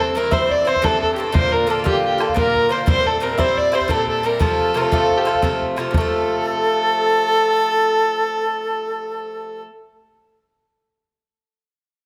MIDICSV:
0, 0, Header, 1, 5, 480
1, 0, Start_track
1, 0, Key_signature, -1, "major"
1, 0, Tempo, 340909
1, 1885, Time_signature, 9, 3, 24, 8
1, 16972, End_track
2, 0, Start_track
2, 0, Title_t, "Flute"
2, 0, Program_c, 0, 73
2, 0, Note_on_c, 0, 69, 70
2, 216, Note_off_c, 0, 69, 0
2, 437, Note_on_c, 0, 72, 69
2, 697, Note_on_c, 0, 74, 73
2, 719, Note_off_c, 0, 72, 0
2, 917, Note_off_c, 0, 74, 0
2, 925, Note_on_c, 0, 72, 75
2, 1145, Note_off_c, 0, 72, 0
2, 1173, Note_on_c, 0, 69, 64
2, 1408, Note_off_c, 0, 69, 0
2, 1428, Note_on_c, 0, 69, 78
2, 1637, Note_off_c, 0, 69, 0
2, 1646, Note_on_c, 0, 69, 67
2, 1865, Note_off_c, 0, 69, 0
2, 1881, Note_on_c, 0, 72, 85
2, 1965, Note_off_c, 0, 72, 0
2, 2132, Note_on_c, 0, 70, 79
2, 2356, Note_on_c, 0, 69, 74
2, 2377, Note_off_c, 0, 70, 0
2, 2582, Note_off_c, 0, 69, 0
2, 2591, Note_on_c, 0, 67, 68
2, 3051, Note_off_c, 0, 67, 0
2, 3077, Note_on_c, 0, 69, 66
2, 3310, Note_on_c, 0, 72, 64
2, 3331, Note_off_c, 0, 69, 0
2, 3366, Note_on_c, 0, 70, 69
2, 3380, Note_off_c, 0, 72, 0
2, 3796, Note_on_c, 0, 72, 75
2, 3817, Note_off_c, 0, 70, 0
2, 4025, Note_off_c, 0, 72, 0
2, 4034, Note_on_c, 0, 72, 82
2, 4232, Note_on_c, 0, 70, 54
2, 4253, Note_off_c, 0, 72, 0
2, 4289, Note_on_c, 0, 69, 72
2, 4311, Note_off_c, 0, 70, 0
2, 4518, Note_off_c, 0, 69, 0
2, 4526, Note_on_c, 0, 70, 71
2, 4765, Note_on_c, 0, 72, 69
2, 4786, Note_off_c, 0, 70, 0
2, 5017, Note_on_c, 0, 74, 68
2, 5039, Note_off_c, 0, 72, 0
2, 5239, Note_off_c, 0, 74, 0
2, 5248, Note_on_c, 0, 72, 75
2, 5485, Note_on_c, 0, 69, 66
2, 5506, Note_off_c, 0, 72, 0
2, 5726, Note_off_c, 0, 69, 0
2, 5735, Note_on_c, 0, 69, 80
2, 5982, Note_on_c, 0, 70, 69
2, 6003, Note_off_c, 0, 69, 0
2, 6208, Note_on_c, 0, 69, 76
2, 6229, Note_off_c, 0, 70, 0
2, 6671, Note_off_c, 0, 69, 0
2, 6679, Note_on_c, 0, 70, 52
2, 6770, Note_on_c, 0, 72, 69
2, 6791, Note_off_c, 0, 70, 0
2, 6823, Note_on_c, 0, 69, 75
2, 6837, Note_off_c, 0, 72, 0
2, 7334, Note_off_c, 0, 69, 0
2, 7341, Note_on_c, 0, 69, 56
2, 7863, Note_off_c, 0, 69, 0
2, 8372, Note_on_c, 0, 69, 100
2, 13542, Note_off_c, 0, 69, 0
2, 16972, End_track
3, 0, Start_track
3, 0, Title_t, "Fiddle"
3, 0, Program_c, 1, 110
3, 0, Note_on_c, 1, 69, 86
3, 230, Note_on_c, 1, 70, 91
3, 251, Note_off_c, 1, 69, 0
3, 459, Note_on_c, 1, 72, 84
3, 480, Note_off_c, 1, 70, 0
3, 728, Note_on_c, 1, 74, 81
3, 749, Note_off_c, 1, 72, 0
3, 953, Note_on_c, 1, 72, 90
3, 974, Note_off_c, 1, 74, 0
3, 1186, Note_on_c, 1, 69, 94
3, 1207, Note_off_c, 1, 72, 0
3, 1426, Note_off_c, 1, 69, 0
3, 1435, Note_on_c, 1, 69, 75
3, 1590, Note_off_c, 1, 69, 0
3, 1605, Note_on_c, 1, 67, 55
3, 1668, Note_on_c, 1, 69, 84
3, 1689, Note_off_c, 1, 67, 0
3, 1887, Note_on_c, 1, 72, 107
3, 1908, Note_off_c, 1, 69, 0
3, 2141, Note_on_c, 1, 70, 94
3, 2162, Note_off_c, 1, 72, 0
3, 2397, Note_on_c, 1, 69, 80
3, 2418, Note_off_c, 1, 70, 0
3, 2617, Note_off_c, 1, 69, 0
3, 2625, Note_on_c, 1, 67, 83
3, 2853, Note_off_c, 1, 67, 0
3, 2893, Note_on_c, 1, 67, 68
3, 3119, Note_on_c, 1, 69, 76
3, 3140, Note_off_c, 1, 67, 0
3, 3327, Note_off_c, 1, 69, 0
3, 3335, Note_on_c, 1, 70, 104
3, 3828, Note_on_c, 1, 72, 85
3, 3849, Note_off_c, 1, 70, 0
3, 4043, Note_off_c, 1, 72, 0
3, 4052, Note_on_c, 1, 72, 110
3, 4317, Note_on_c, 1, 69, 92
3, 4338, Note_off_c, 1, 72, 0
3, 4544, Note_on_c, 1, 70, 80
3, 4566, Note_off_c, 1, 69, 0
3, 4778, Note_on_c, 1, 72, 93
3, 4799, Note_off_c, 1, 70, 0
3, 5035, Note_on_c, 1, 74, 89
3, 5056, Note_off_c, 1, 72, 0
3, 5276, Note_on_c, 1, 72, 77
3, 5297, Note_off_c, 1, 74, 0
3, 5502, Note_on_c, 1, 69, 86
3, 5524, Note_off_c, 1, 72, 0
3, 5748, Note_off_c, 1, 69, 0
3, 5757, Note_on_c, 1, 69, 70
3, 6004, Note_on_c, 1, 70, 74
3, 6025, Note_off_c, 1, 69, 0
3, 6218, Note_off_c, 1, 70, 0
3, 6235, Note_on_c, 1, 69, 84
3, 6725, Note_on_c, 1, 70, 61
3, 6746, Note_off_c, 1, 69, 0
3, 6779, Note_on_c, 1, 69, 97
3, 6800, Note_off_c, 1, 70, 0
3, 7285, Note_on_c, 1, 67, 56
3, 7306, Note_off_c, 1, 69, 0
3, 7336, Note_on_c, 1, 69, 80
3, 7357, Note_off_c, 1, 67, 0
3, 7899, Note_off_c, 1, 69, 0
3, 8356, Note_on_c, 1, 69, 101
3, 13527, Note_off_c, 1, 69, 0
3, 16972, End_track
4, 0, Start_track
4, 0, Title_t, "Bouzouki"
4, 0, Program_c, 2, 25
4, 0, Note_on_c, 2, 43, 58
4, 0, Note_on_c, 2, 52, 64
4, 0, Note_on_c, 2, 60, 70
4, 0, Note_on_c, 2, 64, 69
4, 193, Note_off_c, 2, 43, 0
4, 204, Note_off_c, 2, 52, 0
4, 210, Note_on_c, 2, 43, 52
4, 218, Note_off_c, 2, 60, 0
4, 221, Note_on_c, 2, 52, 54
4, 225, Note_off_c, 2, 64, 0
4, 235, Note_on_c, 2, 60, 68
4, 248, Note_on_c, 2, 64, 72
4, 422, Note_off_c, 2, 64, 0
4, 430, Note_off_c, 2, 60, 0
4, 437, Note_off_c, 2, 52, 0
4, 439, Note_on_c, 2, 64, 61
4, 443, Note_off_c, 2, 43, 0
4, 447, Note_on_c, 2, 60, 57
4, 454, Note_on_c, 2, 52, 48
4, 467, Note_on_c, 2, 43, 50
4, 898, Note_off_c, 2, 64, 0
4, 914, Note_on_c, 2, 64, 50
4, 922, Note_off_c, 2, 60, 0
4, 938, Note_off_c, 2, 52, 0
4, 939, Note_on_c, 2, 60, 53
4, 944, Note_off_c, 2, 43, 0
4, 959, Note_on_c, 2, 52, 45
4, 1142, Note_off_c, 2, 52, 0
4, 1152, Note_off_c, 2, 60, 0
4, 1153, Note_on_c, 2, 43, 68
4, 1156, Note_off_c, 2, 64, 0
4, 1159, Note_on_c, 2, 52, 69
4, 1168, Note_on_c, 2, 60, 62
4, 1178, Note_on_c, 2, 64, 72
4, 1620, Note_off_c, 2, 43, 0
4, 1637, Note_on_c, 2, 43, 49
4, 1642, Note_off_c, 2, 52, 0
4, 1655, Note_off_c, 2, 60, 0
4, 1659, Note_on_c, 2, 52, 53
4, 1660, Note_off_c, 2, 64, 0
4, 1669, Note_on_c, 2, 60, 53
4, 1686, Note_on_c, 2, 64, 59
4, 1859, Note_off_c, 2, 43, 0
4, 1864, Note_off_c, 2, 52, 0
4, 1865, Note_on_c, 2, 46, 70
4, 1869, Note_on_c, 2, 50, 65
4, 1875, Note_off_c, 2, 60, 0
4, 1881, Note_on_c, 2, 58, 73
4, 1882, Note_off_c, 2, 64, 0
4, 1887, Note_on_c, 2, 65, 75
4, 2330, Note_off_c, 2, 46, 0
4, 2343, Note_off_c, 2, 50, 0
4, 2347, Note_on_c, 2, 46, 62
4, 2360, Note_on_c, 2, 50, 58
4, 2370, Note_off_c, 2, 58, 0
4, 2374, Note_off_c, 2, 65, 0
4, 2376, Note_on_c, 2, 58, 57
4, 2394, Note_on_c, 2, 65, 70
4, 2573, Note_off_c, 2, 65, 0
4, 2584, Note_off_c, 2, 58, 0
4, 2590, Note_on_c, 2, 65, 61
4, 2592, Note_off_c, 2, 46, 0
4, 2593, Note_off_c, 2, 50, 0
4, 2601, Note_on_c, 2, 58, 54
4, 2610, Note_on_c, 2, 50, 60
4, 2613, Note_on_c, 2, 46, 60
4, 3056, Note_off_c, 2, 65, 0
4, 3073, Note_on_c, 2, 65, 54
4, 3093, Note_off_c, 2, 58, 0
4, 3095, Note_off_c, 2, 50, 0
4, 3096, Note_off_c, 2, 46, 0
4, 3099, Note_on_c, 2, 58, 45
4, 3115, Note_on_c, 2, 50, 42
4, 3300, Note_off_c, 2, 50, 0
4, 3300, Note_on_c, 2, 46, 68
4, 3305, Note_off_c, 2, 58, 0
4, 3311, Note_off_c, 2, 65, 0
4, 3317, Note_on_c, 2, 50, 57
4, 3322, Note_on_c, 2, 58, 69
4, 3328, Note_on_c, 2, 65, 61
4, 3775, Note_off_c, 2, 46, 0
4, 3791, Note_off_c, 2, 50, 0
4, 3791, Note_on_c, 2, 46, 48
4, 3808, Note_on_c, 2, 50, 54
4, 3810, Note_off_c, 2, 58, 0
4, 3814, Note_off_c, 2, 65, 0
4, 3826, Note_on_c, 2, 58, 53
4, 3830, Note_on_c, 2, 65, 47
4, 4011, Note_off_c, 2, 46, 0
4, 4028, Note_on_c, 2, 46, 55
4, 4032, Note_off_c, 2, 50, 0
4, 4037, Note_off_c, 2, 58, 0
4, 4038, Note_on_c, 2, 55, 63
4, 4043, Note_on_c, 2, 60, 74
4, 4048, Note_off_c, 2, 65, 0
4, 4053, Note_on_c, 2, 64, 78
4, 4493, Note_off_c, 2, 46, 0
4, 4504, Note_off_c, 2, 55, 0
4, 4510, Note_on_c, 2, 46, 56
4, 4521, Note_on_c, 2, 55, 61
4, 4526, Note_off_c, 2, 64, 0
4, 4531, Note_off_c, 2, 60, 0
4, 4537, Note_on_c, 2, 60, 63
4, 4543, Note_on_c, 2, 64, 65
4, 4737, Note_off_c, 2, 64, 0
4, 4747, Note_off_c, 2, 60, 0
4, 4752, Note_off_c, 2, 46, 0
4, 4754, Note_off_c, 2, 55, 0
4, 4754, Note_on_c, 2, 64, 65
4, 4764, Note_on_c, 2, 60, 70
4, 4771, Note_on_c, 2, 55, 52
4, 4782, Note_on_c, 2, 46, 53
4, 5218, Note_off_c, 2, 64, 0
4, 5235, Note_on_c, 2, 64, 60
4, 5254, Note_off_c, 2, 55, 0
4, 5256, Note_off_c, 2, 60, 0
4, 5260, Note_off_c, 2, 46, 0
4, 5261, Note_on_c, 2, 60, 53
4, 5277, Note_on_c, 2, 55, 52
4, 5461, Note_on_c, 2, 46, 64
4, 5463, Note_off_c, 2, 55, 0
4, 5472, Note_off_c, 2, 60, 0
4, 5474, Note_off_c, 2, 64, 0
4, 5480, Note_on_c, 2, 55, 66
4, 5489, Note_on_c, 2, 60, 65
4, 5495, Note_on_c, 2, 64, 71
4, 5943, Note_off_c, 2, 46, 0
4, 5956, Note_off_c, 2, 55, 0
4, 5960, Note_on_c, 2, 46, 57
4, 5973, Note_on_c, 2, 55, 57
4, 5976, Note_off_c, 2, 64, 0
4, 5979, Note_off_c, 2, 60, 0
4, 5985, Note_on_c, 2, 60, 54
4, 5993, Note_on_c, 2, 64, 53
4, 6181, Note_off_c, 2, 46, 0
4, 6187, Note_on_c, 2, 48, 61
4, 6193, Note_off_c, 2, 55, 0
4, 6198, Note_on_c, 2, 53, 75
4, 6200, Note_off_c, 2, 60, 0
4, 6206, Note_on_c, 2, 57, 65
4, 6210, Note_off_c, 2, 64, 0
4, 6215, Note_on_c, 2, 65, 66
4, 6660, Note_off_c, 2, 48, 0
4, 6677, Note_on_c, 2, 48, 58
4, 6685, Note_off_c, 2, 53, 0
4, 6690, Note_on_c, 2, 53, 60
4, 6704, Note_off_c, 2, 57, 0
4, 6709, Note_on_c, 2, 57, 61
4, 6712, Note_off_c, 2, 65, 0
4, 6718, Note_on_c, 2, 65, 63
4, 6905, Note_off_c, 2, 65, 0
4, 6913, Note_off_c, 2, 57, 0
4, 6915, Note_off_c, 2, 48, 0
4, 6922, Note_off_c, 2, 53, 0
4, 6922, Note_on_c, 2, 65, 61
4, 6930, Note_on_c, 2, 57, 58
4, 6944, Note_on_c, 2, 53, 67
4, 6950, Note_on_c, 2, 48, 48
4, 7390, Note_off_c, 2, 65, 0
4, 7395, Note_on_c, 2, 65, 61
4, 7415, Note_off_c, 2, 57, 0
4, 7420, Note_on_c, 2, 57, 51
4, 7423, Note_off_c, 2, 48, 0
4, 7440, Note_off_c, 2, 53, 0
4, 7440, Note_on_c, 2, 53, 40
4, 7623, Note_off_c, 2, 53, 0
4, 7634, Note_off_c, 2, 65, 0
4, 7635, Note_off_c, 2, 57, 0
4, 7635, Note_on_c, 2, 48, 63
4, 7640, Note_on_c, 2, 53, 60
4, 7652, Note_on_c, 2, 57, 71
4, 7662, Note_on_c, 2, 65, 65
4, 8101, Note_off_c, 2, 48, 0
4, 8118, Note_on_c, 2, 48, 49
4, 8124, Note_off_c, 2, 53, 0
4, 8130, Note_on_c, 2, 53, 64
4, 8140, Note_off_c, 2, 57, 0
4, 8146, Note_on_c, 2, 57, 57
4, 8157, Note_off_c, 2, 65, 0
4, 8163, Note_on_c, 2, 65, 55
4, 8300, Note_off_c, 2, 48, 0
4, 8317, Note_on_c, 2, 48, 56
4, 8351, Note_off_c, 2, 53, 0
4, 8368, Note_on_c, 2, 53, 65
4, 8369, Note_off_c, 2, 57, 0
4, 8378, Note_off_c, 2, 65, 0
4, 8413, Note_on_c, 2, 57, 73
4, 8455, Note_on_c, 2, 65, 67
4, 13543, Note_off_c, 2, 48, 0
4, 13594, Note_off_c, 2, 53, 0
4, 13639, Note_off_c, 2, 57, 0
4, 13681, Note_off_c, 2, 65, 0
4, 16972, End_track
5, 0, Start_track
5, 0, Title_t, "Bodhran"
5, 446, Note_on_c, 9, 64, 79
5, 587, Note_off_c, 9, 64, 0
5, 710, Note_on_c, 9, 64, 23
5, 851, Note_off_c, 9, 64, 0
5, 948, Note_on_c, 9, 64, 55
5, 1068, Note_off_c, 9, 64, 0
5, 1068, Note_on_c, 9, 64, 27
5, 1184, Note_off_c, 9, 64, 0
5, 1184, Note_on_c, 9, 64, 76
5, 1325, Note_off_c, 9, 64, 0
5, 1443, Note_on_c, 9, 64, 24
5, 1584, Note_off_c, 9, 64, 0
5, 1900, Note_on_c, 9, 64, 92
5, 2040, Note_off_c, 9, 64, 0
5, 2159, Note_on_c, 9, 64, 20
5, 2299, Note_off_c, 9, 64, 0
5, 2620, Note_on_c, 9, 64, 79
5, 2760, Note_off_c, 9, 64, 0
5, 3104, Note_on_c, 9, 64, 62
5, 3218, Note_off_c, 9, 64, 0
5, 3218, Note_on_c, 9, 64, 23
5, 3334, Note_off_c, 9, 64, 0
5, 3334, Note_on_c, 9, 64, 83
5, 3475, Note_off_c, 9, 64, 0
5, 3586, Note_on_c, 9, 64, 30
5, 3727, Note_off_c, 9, 64, 0
5, 4044, Note_on_c, 9, 64, 84
5, 4185, Note_off_c, 9, 64, 0
5, 4306, Note_on_c, 9, 64, 21
5, 4447, Note_off_c, 9, 64, 0
5, 4768, Note_on_c, 9, 64, 77
5, 4908, Note_off_c, 9, 64, 0
5, 5027, Note_on_c, 9, 64, 20
5, 5168, Note_off_c, 9, 64, 0
5, 5254, Note_on_c, 9, 64, 49
5, 5360, Note_off_c, 9, 64, 0
5, 5360, Note_on_c, 9, 64, 19
5, 5475, Note_off_c, 9, 64, 0
5, 5475, Note_on_c, 9, 64, 65
5, 5616, Note_off_c, 9, 64, 0
5, 5727, Note_on_c, 9, 64, 19
5, 5867, Note_off_c, 9, 64, 0
5, 6198, Note_on_c, 9, 64, 66
5, 6339, Note_off_c, 9, 64, 0
5, 6461, Note_on_c, 9, 64, 19
5, 6602, Note_off_c, 9, 64, 0
5, 6695, Note_on_c, 9, 64, 40
5, 6836, Note_off_c, 9, 64, 0
5, 6928, Note_on_c, 9, 64, 73
5, 7069, Note_off_c, 9, 64, 0
5, 7187, Note_on_c, 9, 64, 18
5, 7328, Note_off_c, 9, 64, 0
5, 7418, Note_on_c, 9, 64, 45
5, 7526, Note_off_c, 9, 64, 0
5, 7526, Note_on_c, 9, 64, 18
5, 7639, Note_off_c, 9, 64, 0
5, 7639, Note_on_c, 9, 64, 70
5, 7780, Note_off_c, 9, 64, 0
5, 7907, Note_on_c, 9, 64, 21
5, 8047, Note_off_c, 9, 64, 0
5, 8135, Note_on_c, 9, 64, 47
5, 8276, Note_off_c, 9, 64, 0
5, 8362, Note_on_c, 9, 64, 84
5, 8503, Note_off_c, 9, 64, 0
5, 16972, End_track
0, 0, End_of_file